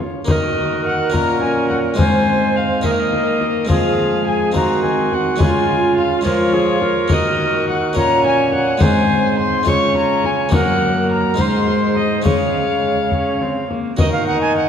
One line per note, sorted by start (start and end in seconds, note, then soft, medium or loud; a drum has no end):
0.00 0.22 G#3 medium
0.00 0.22 C#4 medium
0.00 0.23 F4 medium
0.25 1.15 D#3 soft
0.25 1.09 D#3 medium
0.25 1.09 A#3 soft
0.25 1.10 A#4 soft
0.25 0.33 C5 medium
0.25 0.81 D#5 medium
0.25 frame drum medium
0.29 1.16 F#4 soft
0.29 1.95 A#4 medium
0.86 1.13 F#5 medium
1.10 1.94 A#2 soft
1.10 1.98 A#2 soft
1.10 1.94 C#4 soft
1.10 1.95 A#4 soft
1.14 2.00 C#4 medium
1.14 1.42 A#5 medium
1.14 frame drum soft
1.42 1.69 G#5 medium
1.42 frame drum soft
1.70 1.78 F#5 medium
1.70 frame drum soft
1.94 2.80 G#2 medium
1.94 2.79 G#3 soft
1.94 2.80 D#4 soft
1.94 2.80 C5 soft
1.98 2.85 G#2 soft
1.98 2.87 C4 soft
1.98 2.83 C5 medium
1.98 2.57 G#5 medium
1.98 frame drum medium
2.56 2.87 F5 medium
2.81 3.70 D#3 medium
2.81 3.66 D#3 soft
2.81 3.66 D#4 soft
2.81 3.67 A#4 soft
2.81 3.68 A#4 medium
2.81 frame drum soft
2.86 3.70 A#3 medium
2.86 2.93 D#5 medium
2.91 3.01 F5 medium
3.00 3.69 D#5 medium
3.13 frame drum soft
3.41 frame drum soft
3.65 4.56 F3 soft
3.65 4.50 G#3 soft
3.65 4.51 C4 soft
3.65 4.51 G#4 soft
3.69 4.51 F3 medium
3.69 4.54 G#3 soft
3.69 4.54 G#4 medium
3.69 4.26 F5 medium
3.69 frame drum medium
4.27 4.54 G#5 medium
4.52 5.41 D#3 soft
4.52 5.36 D#3 soft
4.52 5.35 G#3 soft
4.52 5.36 C4 soft
4.52 5.39 C4 medium
4.52 5.39 F#4 medium
4.52 5.37 G#4 soft
4.52 4.83 A#5 medium
4.52 frame drum soft
4.84 5.15 G#5 medium
4.84 frame drum soft
5.12 5.41 F#5 medium
5.12 frame drum soft
5.36 6.21 C#3 soft
5.36 6.25 C#3 medium
5.36 6.20 G#3 soft
5.36 6.21 C#4 soft
5.36 6.22 F4 soft
5.36 5.45 F#4 medium
5.40 6.24 F4 medium
5.40 5.97 G#5 medium
5.40 frame drum medium
5.97 6.25 F5 medium
6.21 6.79 F3 medium
6.21 7.06 G#3 soft
6.21 7.07 C#4 soft
6.21 7.07 F4 soft
6.21 6.55 A#4 medium
6.26 6.82 F3 soft
6.26 7.13 F4 medium
6.26 7.14 C#5 loud
6.26 frame drum soft
6.53 6.81 G#4 medium
6.53 frame drum soft
6.81 7.66 A#4 medium
6.81 frame drum soft
7.08 7.92 D#3 medium
7.08 7.97 D#3 medium
7.08 7.92 A#3 soft
7.08 7.98 F#4 medium
7.08 7.93 A#4 soft
7.08 frame drum medium
7.13 7.68 D#5 medium
7.69 7.96 F#5 medium
7.93 8.77 A#2 soft
7.93 8.80 A#2 medium
7.93 8.77 C#4 soft
7.93 8.81 C#4 medium
7.93 8.78 A#4 soft
7.93 8.82 C#5 medium
7.93 8.24 A#5 loud
7.93 frame drum soft
8.25 8.53 G#5 medium
8.25 frame drum soft
8.52 8.84 F#5 medium
8.52 frame drum soft
8.78 9.68 G#2 medium
8.78 9.62 G#3 medium
8.78 9.63 D#4 soft
8.78 9.63 C5 soft
8.78 9.66 C5 medium
8.78 frame drum medium
8.82 9.63 G#2 medium
8.82 9.70 C4 medium
8.82 9.39 G#5 loud
9.39 9.69 C6 medium
9.63 10.52 C#3 medium
9.63 10.48 C#3 soft
9.63 10.48 G#3 soft
9.63 10.49 F4 soft
9.63 10.49 C#5 soft
9.63 10.51 C#5 medium
9.63 frame drum soft
9.68 10.53 C#4 medium
9.68 9.96 C#6 loud
9.95 10.27 A#5 medium
9.95 frame drum medium
10.24 10.53 G#5 medium
10.24 frame drum soft
10.49 11.34 F#2 medium
10.49 11.41 F#2 medium
10.49 11.34 A#3 soft
10.49 11.34 F#4 soft
10.49 11.35 C#5 soft
10.49 frame drum medium
10.53 11.37 A#3 soft
10.53 11.37 A#4 medium
10.53 11.09 F#5 medium
11.11 11.42 A#5 medium
11.34 12.21 G#2 soft
11.34 12.20 G#3 soft
11.34 12.21 D#4 soft
11.34 12.22 C5 soft
11.38 12.25 G#2 medium
11.38 12.24 G#3 medium
11.38 12.24 C5 medium
11.38 11.96 C6 medium
11.38 frame drum soft
11.67 frame drum soft
11.97 12.24 D#5 medium
11.97 frame drum soft
12.22 13.66 C#3 soft
12.22 13.67 C#3 medium
12.22 13.93 G#3 soft
12.22 13.94 C#4 soft
12.22 13.95 C#5 soft
12.22 13.53 C#5 medium
12.22 13.67 F5 medium
12.22 frame drum medium
12.26 13.05 G#3 soft
13.12 13.43 C#4 medium
13.12 frame drum soft
13.41 13.70 C4 medium
13.41 frame drum soft
13.70 13.98 A#3 medium
13.70 frame drum soft
13.97 14.69 D#3 medium
13.97 14.69 D#4 medium
13.97 14.69 F#4 medium
13.97 14.69 A#4 medium
13.97 14.12 D#5 loud
13.97 frame drum medium
14.13 14.27 F5 medium
14.27 14.41 F#5 medium
14.41 14.56 G#5 medium
14.57 14.69 F#5 medium